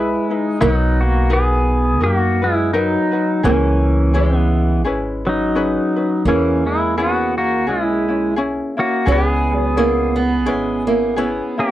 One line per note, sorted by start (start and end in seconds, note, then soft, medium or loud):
0.00 0.13 B1 medium
0.00 0.58 G#3 medium
0.00 0.60 G#3 medium
0.00 0.30 E4 medium
0.00 0.31 E4 medium
0.00 0.31 G#4 medium
0.00 0.30 B4 medium
0.30 0.61 D#4 medium
0.30 0.60 E4 medium
0.30 0.60 B4 medium
0.60 2.03 B1 loud
0.60 0.99 F#3 medium
0.60 3.52 B3 loud
0.60 1.28 D#4 medium
0.60 0.72 E4 loud
0.60 1.29 F#4 medium
0.60 1.29 A#4 medium
0.72 1.02 D#4 loud
1.01 1.31 A#3 medium
1.01 1.33 F#4 medium
1.30 2.00 D#4 medium
1.30 2.00 F#4 medium
1.30 2.03 G#4 loud
1.30 1.99 A#4 medium
1.30 2.03 B4 medium
1.35 2.00 B3 medium
2.00 2.94 F#2 medium
2.00 2.42 D#4 medium
2.00 2.42 F#4 medium
2.00 2.44 F#4 loud
2.00 2.41 A#4 medium
2.06 2.41 A#3 medium
2.42 2.73 G#3 medium
2.42 2.72 E4 loud
2.42 2.73 F#4 soft
2.42 2.73 B4 medium
2.73 3.41 F#3 medium
2.73 3.13 D#4 medium
2.73 3.46 D#4 medium
2.73 3.12 F#4 medium
2.73 3.13 A#4 medium
2.73 3.10 B4 medium
3.12 3.44 D#4 soft
3.12 3.44 F#4 soft
3.12 3.43 B4 soft
3.43 4.85 C#2 medium
3.43 4.82 E3 medium
3.43 4.17 A#3 loud
3.43 4.14 C#4 medium
3.43 4.37 C#4 loud
3.43 4.14 E4 medium
3.43 4.13 G#4 medium
4.14 5.91 G#3 medium
4.14 4.85 C#4 medium
4.14 4.85 E4 medium
4.14 4.84 G#4 medium
4.14 4.86 B4 medium
4.37 4.81 B3 loud
4.84 5.76 G#1 medium
4.84 5.24 C#4 medium
4.84 5.25 E4 medium
4.84 5.24 G#4 medium
4.84 5.24 B4 medium
5.25 6.23 F#3 medium
5.25 5.54 C#4 soft
5.25 6.31 D#4 medium
5.25 5.55 B4 soft
5.55 5.95 C#4 medium
5.55 5.95 G#4 medium
5.55 5.95 B4 medium
5.96 6.26 C#4 soft
5.96 6.26 B4 soft
6.25 7.67 E2 medium
6.25 6.64 E3 medium
6.25 9.03 A#3 medium
6.25 6.98 C#4 medium
6.25 6.67 C#4 medium
6.25 6.99 E4 medium
6.25 6.97 G#4 medium
6.66 6.94 G#3 medium
6.66 6.98 E4 medium
6.97 7.34 B3 medium
6.97 7.66 C#4 medium
6.97 7.68 E4 medium
6.97 7.37 F#4 loud
6.97 7.66 G#4 medium
7.38 7.66 A#3 medium
7.38 7.68 F#4 loud
7.67 8.58 B1 medium
7.67 8.34 G#3 medium
7.67 8.06 C#4 medium
7.67 8.07 E4 medium
7.67 8.34 E4 medium
7.67 8.06 G#4 medium
8.08 8.36 C#4 soft
8.08 8.36 E4 soft
8.36 8.77 C#4 medium
8.36 8.76 E4 medium
8.36 8.76 G#4 medium
8.77 9.07 A#3 medium
8.77 9.05 C#4 soft
8.77 9.05 E4 medium
8.77 9.10 F#4 loud
9.06 10.48 C#2 medium
9.06 9.57 G#3 loud
9.06 9.76 C#4 medium
9.06 9.76 E4 medium
9.06 9.76 G#4 medium
9.06 9.80 B4 medium
9.12 11.56 B3 medium
9.12 11.68 G#4 loud
9.57 9.74 F#3 loud
9.77 10.18 A#3 loud
9.77 10.45 C#4 medium
9.77 10.45 E4 medium
9.77 10.44 G#4 medium
10.16 10.48 B3 medium
10.46 11.39 G#1 medium
10.46 10.87 G#3 loud
10.46 10.86 C#4 medium
10.46 10.87 E4 medium
10.46 10.86 G#4 medium
10.46 10.87 B4 medium
10.87 11.17 A#3 medium
10.87 11.16 C#4 soft
10.87 11.17 E4 medium
11.16 11.71 B3 loud
11.16 11.57 C#4 medium
11.16 11.56 E4 medium
11.16 11.57 G#4 medium
11.16 11.58 B4 medium
11.58 11.71 A#3 medium
11.58 11.71 C#4 soft
11.58 11.71 E4 soft
11.58 11.71 F#4 loud